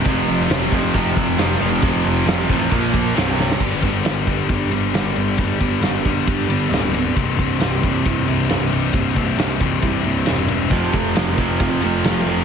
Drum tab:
CC |x-x-x-x-x-x-x-x-|x-x-x-x-x-x-x---|x---------------|----------------|
RD |----------------|----------------|--x-x-x-x-x-x-x-|x-x-x-x-x-x-x-x-|
SD |---oo-------o---|----o-------o-oo|----o-------o---|----o-------o---|
BD |o-----o-o-o-----|o-----o-o-o-----|o-o---o-o-------|o-o---o-o-------|

CC |----------------|----------------|----------------|
RD |x-x-x-x-x-x-x-x-|x-x-x-x-x-x-x-x-|x-x-x-x-x-x-x-x-|
SD |----o-------o---|----o-------o---|----o-------o---|
BD |o-o---o-o-------|o-o---o-o-------|o-o---o-o-------|